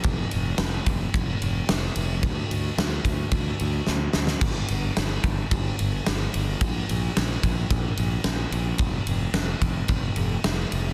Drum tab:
CC |----------------|----------------|x---------------|----------------|
RD |x-x-x-x-x-x-x-x-|x-x-x-x-x-x-----|x-x-x-x-x-x-x-x-|x-x-x-x-x-x-x-x-|
SD |----o-------o---|----o-------o-oo|----o-------o---|----o-------o---|
BD |o-----o-o-------|o-----o-o-------|o-----o-o-------|o-----o-o-------|

CC |----------------|
RD |x-x-x-x-x-x-x-x-|
SD |----o-------o---|
BD |o-----o-o-------|